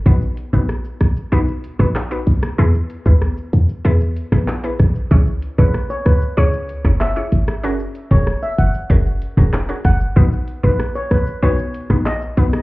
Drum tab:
HH |--x---x---x---x-|--x---x---x---x-|--x---x---x---x-|--x---x---x---x-|
SH |xxxxxxxxxxxxxxxx|xxxxxxxxxxxxxxxx|xxxxxxxxxxxxxxxx|xxxxxxxxxxxxxxxx|
CP |------------x---|------------x---|------------x---|------------x---|
SD |----r-r----rr--r|----r------rr-r-|----r-r----rr--r|----r-------r-r-|
BD |o--o-------o----|---o-------o--o-|o--o-------o----|---o----o--o--o-|

HH |--x---x---x---x-|
SH |xxxxxxxxxxxxxxxx|
CP |------------x---|
SD |----r-r----rr--r|
BD |o--o-------o----|